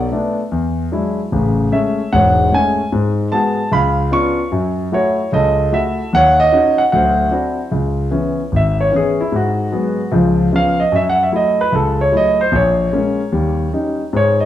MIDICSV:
0, 0, Header, 1, 2, 480
1, 0, Start_track
1, 0, Key_signature, 4, "minor"
1, 0, Tempo, 400267
1, 1573, Time_signature, 4, 2, 24, 8
1, 17332, End_track
2, 0, Start_track
2, 0, Title_t, "Grand piano"
2, 0, Program_c, 0, 0
2, 0, Note_on_c, 0, 74, 61
2, 141, Note_on_c, 0, 57, 55
2, 146, Note_on_c, 0, 59, 53
2, 152, Note_on_c, 0, 62, 62
2, 408, Note_off_c, 0, 74, 0
2, 465, Note_off_c, 0, 57, 0
2, 467, Note_off_c, 0, 59, 0
2, 470, Note_off_c, 0, 62, 0
2, 618, Note_on_c, 0, 40, 70
2, 1031, Note_off_c, 0, 40, 0
2, 1101, Note_on_c, 0, 54, 54
2, 1102, Note_on_c, 0, 56, 47
2, 1105, Note_on_c, 0, 62, 43
2, 1113, Note_on_c, 0, 64, 55
2, 1425, Note_off_c, 0, 54, 0
2, 1426, Note_off_c, 0, 56, 0
2, 1427, Note_off_c, 0, 62, 0
2, 1431, Note_off_c, 0, 64, 0
2, 1583, Note_on_c, 0, 49, 67
2, 1586, Note_on_c, 0, 33, 63
2, 1994, Note_off_c, 0, 49, 0
2, 1996, Note_off_c, 0, 33, 0
2, 2056, Note_on_c, 0, 56, 52
2, 2061, Note_on_c, 0, 57, 53
2, 2063, Note_on_c, 0, 61, 59
2, 2068, Note_on_c, 0, 76, 78
2, 2383, Note_off_c, 0, 56, 0
2, 2386, Note_off_c, 0, 57, 0
2, 2387, Note_off_c, 0, 61, 0
2, 2549, Note_on_c, 0, 28, 64
2, 2549, Note_on_c, 0, 78, 93
2, 2551, Note_on_c, 0, 44, 65
2, 2556, Note_off_c, 0, 76, 0
2, 2572, Note_on_c, 0, 73, 62
2, 2957, Note_off_c, 0, 28, 0
2, 2959, Note_off_c, 0, 44, 0
2, 3015, Note_on_c, 0, 56, 53
2, 3026, Note_on_c, 0, 57, 47
2, 3028, Note_on_c, 0, 61, 55
2, 3036, Note_off_c, 0, 78, 0
2, 3051, Note_on_c, 0, 80, 92
2, 3343, Note_off_c, 0, 56, 0
2, 3348, Note_off_c, 0, 57, 0
2, 3350, Note_off_c, 0, 61, 0
2, 3466, Note_off_c, 0, 73, 0
2, 3481, Note_off_c, 0, 80, 0
2, 3508, Note_on_c, 0, 44, 71
2, 3917, Note_off_c, 0, 44, 0
2, 3979, Note_on_c, 0, 81, 82
2, 3984, Note_on_c, 0, 56, 56
2, 3990, Note_on_c, 0, 59, 54
2, 3994, Note_on_c, 0, 66, 59
2, 4308, Note_off_c, 0, 56, 0
2, 4311, Note_off_c, 0, 59, 0
2, 4313, Note_off_c, 0, 66, 0
2, 4424, Note_off_c, 0, 81, 0
2, 4457, Note_on_c, 0, 37, 70
2, 4469, Note_on_c, 0, 83, 94
2, 4491, Note_on_c, 0, 77, 65
2, 4871, Note_off_c, 0, 37, 0
2, 4932, Note_on_c, 0, 59, 51
2, 4934, Note_on_c, 0, 61, 50
2, 4939, Note_on_c, 0, 62, 52
2, 4944, Note_on_c, 0, 65, 60
2, 4952, Note_on_c, 0, 85, 95
2, 4957, Note_off_c, 0, 83, 0
2, 5262, Note_off_c, 0, 59, 0
2, 5263, Note_off_c, 0, 61, 0
2, 5266, Note_off_c, 0, 62, 0
2, 5268, Note_off_c, 0, 65, 0
2, 5386, Note_off_c, 0, 77, 0
2, 5391, Note_off_c, 0, 85, 0
2, 5418, Note_on_c, 0, 42, 67
2, 5418, Note_on_c, 0, 54, 67
2, 5832, Note_off_c, 0, 42, 0
2, 5832, Note_off_c, 0, 54, 0
2, 5900, Note_on_c, 0, 57, 56
2, 5900, Note_on_c, 0, 64, 49
2, 5909, Note_on_c, 0, 66, 64
2, 5927, Note_on_c, 0, 73, 81
2, 6226, Note_off_c, 0, 57, 0
2, 6226, Note_off_c, 0, 64, 0
2, 6231, Note_off_c, 0, 66, 0
2, 6359, Note_off_c, 0, 73, 0
2, 6385, Note_on_c, 0, 37, 69
2, 6400, Note_on_c, 0, 75, 88
2, 6415, Note_on_c, 0, 69, 66
2, 6796, Note_off_c, 0, 37, 0
2, 6863, Note_on_c, 0, 57, 53
2, 6864, Note_on_c, 0, 64, 44
2, 6873, Note_on_c, 0, 66, 61
2, 6881, Note_on_c, 0, 76, 87
2, 6882, Note_off_c, 0, 75, 0
2, 7188, Note_off_c, 0, 57, 0
2, 7188, Note_off_c, 0, 64, 0
2, 7192, Note_off_c, 0, 66, 0
2, 7307, Note_off_c, 0, 69, 0
2, 7316, Note_off_c, 0, 76, 0
2, 7350, Note_on_c, 0, 39, 74
2, 7371, Note_on_c, 0, 78, 112
2, 7391, Note_on_c, 0, 73, 76
2, 7644, Note_off_c, 0, 78, 0
2, 7672, Note_on_c, 0, 75, 106
2, 7758, Note_off_c, 0, 39, 0
2, 7821, Note_on_c, 0, 61, 56
2, 7824, Note_on_c, 0, 63, 51
2, 7829, Note_on_c, 0, 66, 65
2, 8133, Note_on_c, 0, 78, 90
2, 8146, Note_off_c, 0, 61, 0
2, 8148, Note_off_c, 0, 63, 0
2, 8151, Note_off_c, 0, 66, 0
2, 8154, Note_off_c, 0, 75, 0
2, 8193, Note_off_c, 0, 78, 0
2, 8275, Note_off_c, 0, 73, 0
2, 8300, Note_on_c, 0, 78, 83
2, 8307, Note_on_c, 0, 54, 65
2, 8311, Note_on_c, 0, 38, 65
2, 8330, Note_on_c, 0, 72, 60
2, 8717, Note_off_c, 0, 54, 0
2, 8719, Note_off_c, 0, 38, 0
2, 8745, Note_off_c, 0, 78, 0
2, 8770, Note_on_c, 0, 60, 53
2, 8771, Note_on_c, 0, 62, 48
2, 8774, Note_on_c, 0, 64, 50
2, 8782, Note_on_c, 0, 66, 60
2, 9101, Note_off_c, 0, 60, 0
2, 9101, Note_off_c, 0, 62, 0
2, 9103, Note_off_c, 0, 64, 0
2, 9107, Note_off_c, 0, 66, 0
2, 9225, Note_off_c, 0, 72, 0
2, 9251, Note_on_c, 0, 37, 64
2, 9668, Note_off_c, 0, 37, 0
2, 9723, Note_on_c, 0, 59, 49
2, 9727, Note_on_c, 0, 52, 54
2, 9733, Note_on_c, 0, 61, 56
2, 10057, Note_off_c, 0, 59, 0
2, 10059, Note_off_c, 0, 52, 0
2, 10062, Note_off_c, 0, 61, 0
2, 10218, Note_on_c, 0, 32, 65
2, 10269, Note_on_c, 0, 76, 79
2, 10545, Note_off_c, 0, 76, 0
2, 10560, Note_on_c, 0, 73, 80
2, 10632, Note_off_c, 0, 32, 0
2, 10692, Note_on_c, 0, 52, 52
2, 10693, Note_on_c, 0, 59, 48
2, 10698, Note_on_c, 0, 61, 56
2, 10708, Note_off_c, 0, 73, 0
2, 10747, Note_on_c, 0, 68, 81
2, 11022, Note_off_c, 0, 52, 0
2, 11022, Note_off_c, 0, 59, 0
2, 11024, Note_off_c, 0, 68, 0
2, 11025, Note_off_c, 0, 61, 0
2, 11040, Note_on_c, 0, 64, 77
2, 11177, Note_on_c, 0, 44, 62
2, 11188, Note_off_c, 0, 64, 0
2, 11223, Note_on_c, 0, 66, 73
2, 11591, Note_off_c, 0, 44, 0
2, 11655, Note_on_c, 0, 54, 56
2, 11661, Note_on_c, 0, 56, 52
2, 11667, Note_on_c, 0, 59, 60
2, 11983, Note_off_c, 0, 54, 0
2, 11986, Note_off_c, 0, 56, 0
2, 11989, Note_off_c, 0, 59, 0
2, 12111, Note_off_c, 0, 66, 0
2, 12130, Note_on_c, 0, 53, 68
2, 12135, Note_on_c, 0, 37, 69
2, 12547, Note_off_c, 0, 53, 0
2, 12550, Note_off_c, 0, 37, 0
2, 12614, Note_on_c, 0, 53, 52
2, 12620, Note_on_c, 0, 59, 49
2, 12622, Note_on_c, 0, 61, 57
2, 12660, Note_on_c, 0, 77, 89
2, 12940, Note_off_c, 0, 77, 0
2, 12942, Note_off_c, 0, 53, 0
2, 12945, Note_off_c, 0, 59, 0
2, 12946, Note_off_c, 0, 61, 0
2, 12949, Note_on_c, 0, 75, 84
2, 13094, Note_on_c, 0, 42, 68
2, 13096, Note_on_c, 0, 54, 68
2, 13101, Note_off_c, 0, 75, 0
2, 13139, Note_on_c, 0, 76, 86
2, 13273, Note_off_c, 0, 76, 0
2, 13305, Note_on_c, 0, 78, 91
2, 13436, Note_off_c, 0, 78, 0
2, 13468, Note_on_c, 0, 76, 74
2, 13509, Note_off_c, 0, 42, 0
2, 13510, Note_off_c, 0, 54, 0
2, 13573, Note_on_c, 0, 54, 57
2, 13578, Note_on_c, 0, 57, 51
2, 13581, Note_on_c, 0, 64, 64
2, 13597, Note_off_c, 0, 76, 0
2, 13621, Note_on_c, 0, 75, 84
2, 13900, Note_off_c, 0, 75, 0
2, 13901, Note_off_c, 0, 54, 0
2, 13904, Note_off_c, 0, 57, 0
2, 13906, Note_off_c, 0, 64, 0
2, 13922, Note_on_c, 0, 71, 89
2, 14058, Note_on_c, 0, 37, 63
2, 14068, Note_off_c, 0, 71, 0
2, 14094, Note_on_c, 0, 69, 80
2, 14376, Note_off_c, 0, 69, 0
2, 14405, Note_on_c, 0, 73, 80
2, 14471, Note_off_c, 0, 37, 0
2, 14534, Note_on_c, 0, 57, 46
2, 14536, Note_on_c, 0, 54, 54
2, 14544, Note_on_c, 0, 64, 60
2, 14549, Note_off_c, 0, 73, 0
2, 14593, Note_on_c, 0, 75, 95
2, 14861, Note_off_c, 0, 57, 0
2, 14863, Note_off_c, 0, 54, 0
2, 14866, Note_off_c, 0, 64, 0
2, 14866, Note_off_c, 0, 75, 0
2, 14880, Note_on_c, 0, 72, 84
2, 15015, Note_on_c, 0, 34, 72
2, 15026, Note_off_c, 0, 72, 0
2, 15056, Note_on_c, 0, 73, 82
2, 15428, Note_off_c, 0, 34, 0
2, 15498, Note_on_c, 0, 56, 57
2, 15507, Note_on_c, 0, 58, 48
2, 15508, Note_on_c, 0, 61, 63
2, 15823, Note_off_c, 0, 56, 0
2, 15827, Note_off_c, 0, 58, 0
2, 15828, Note_off_c, 0, 61, 0
2, 15975, Note_on_c, 0, 39, 63
2, 15977, Note_on_c, 0, 55, 70
2, 16388, Note_off_c, 0, 39, 0
2, 16389, Note_off_c, 0, 55, 0
2, 16424, Note_off_c, 0, 73, 0
2, 16464, Note_on_c, 0, 55, 52
2, 16469, Note_on_c, 0, 61, 47
2, 16471, Note_on_c, 0, 63, 55
2, 16785, Note_off_c, 0, 55, 0
2, 16787, Note_off_c, 0, 61, 0
2, 16789, Note_off_c, 0, 63, 0
2, 16946, Note_on_c, 0, 44, 70
2, 16988, Note_on_c, 0, 73, 84
2, 17261, Note_off_c, 0, 73, 0
2, 17274, Note_on_c, 0, 75, 82
2, 17332, Note_off_c, 0, 44, 0
2, 17332, Note_off_c, 0, 75, 0
2, 17332, End_track
0, 0, End_of_file